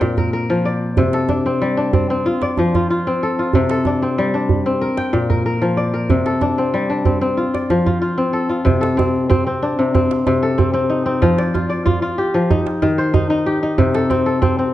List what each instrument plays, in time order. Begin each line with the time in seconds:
Already playing: kora C4 D4 A#4 G5
0.01 kora A#2, djembe tone
0.17 kora A#4, djembe slap, djembe bass
0.33 kora A#4, djembe slap
0.49 kora F3, djembe slap
0.65 kora D5
0.97 kora C3, djembe bass
1.13 kora A4, djembe slap
1.29 kora D4, djembe tone
1.46 kora C4, djembe slap
1.62 kora G3
1.78 kora D4, djembe slap
1.94 kora C4, djembe bass
2.10 kora C4, djembe slap
2.26 kora F4
2.42 kora D5, djembe slap
2.57 kora F3, djembe tone
2.74 kora F4, djembe slap, djembe bass
2.90 kora F4, djembe slap
3.06 kora C4, djembe slap
3.23 kora A4
3.39 kora F4
3.53 kora C3, djembe bass
3.69 kora A4, djembe slap
3.85 kora D4, djembe tone
4.02 kora C4, djembe slap
4.18 kora G3
4.34 kora D4, djembe slap
4.49 djembe bass
4.65 kora C4, djembe slap
4.81 kora A#4
4.97 kora G5, djembe slap
5.13 kora A#2, djembe tone
5.30 kora A#4, djembe slap, djembe bass
5.46 kora A#4, djembe slap
5.62 kora F3, djembe slap
5.77 kora D5
5.94 kora A#4
6.10 kora C3, djembe bass
6.26 kora A4, djembe slap
6.41 kora D4, djembe slap, djembe tone
6.58 kora C4, djembe slap
6.74 kora G3, djembe slap
6.90 kora D4
7.05 kora C4, djembe bass
7.21 kora C4
7.37 kora F4, djembe slap
7.54 kora D5, djembe slap
7.70 kora F3, djembe slap, djembe tone
7.86 kora F4, djembe bass
8.02 kora F4, djembe slap
8.18 kora C4
8.33 kora A4, djembe slap
8.49 kora F4
8.65 kora C3, djembe slap, djembe bass
8.81 kora A4, djembe slap
8.97 kora C4, djembe tone
9.15 djembe slap
9.29 kora C4, djembe bass
9.46 kora C4, djembe slap
9.62 kora D4
9.78 kora C3
9.94 kora C4, djembe bass
10.11 djembe slap
10.26 kora C3, djembe tone
10.42 kora A4
10.58 kora C4, djembe bass
10.74 kora C4, djembe slap
10.90 kora D#4, djembe slap
11.06 kora C4, djembe slap
11.22 kora F3, djembe slap, djembe bass
11.38 kora D5, djembe slap
11.54 kora F4, djembe tone
11.69 kora D5, djembe slap
11.85 kora F4, djembe bass
12.02 kora F4, djembe slap
12.18 kora G4
12.34 kora F3
12.50 kora D#4, djembe bass
12.66 djembe slap
12.82 kora D#3, djembe tone
12.98 kora C5
13.14 kora D#4, djembe bass
13.30 kora D#4, djembe slap
13.47 kora G4, djembe slap
13.63 kora D#4, djembe slap
13.78 kora C3, djembe slap, djembe bass
13.95 kora A4, djembe slap
14.10 kora C4, djembe tone
14.26 kora A4, djembe slap
14.42 kora C4, djembe bass
14.59 kora C4, djembe slap